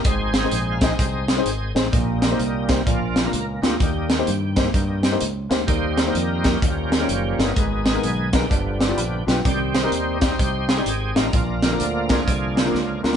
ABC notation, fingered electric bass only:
X:1
M:4/4
L:1/8
Q:"Swing" 1/4=128
K:Eb
V:1 name="Fingered electric bass" clef=bass
A,,,2 B,,,2 C,,2 A,,, =A,,, | B,,,2 C,,2 B,,,2 _D,, =D,, | E,,2 G,,2 G,,2 _D,, =D,, | E,,2 F,,2 E,,2 _G,,, =G,,, |
A,,,2 _C,,2 G,,,2 B,,, =B,,, | C,,2 E,,2 C,,2 A,,, =A,,, | B,,,2 D,,2 C,,2 _D,, =D,, |]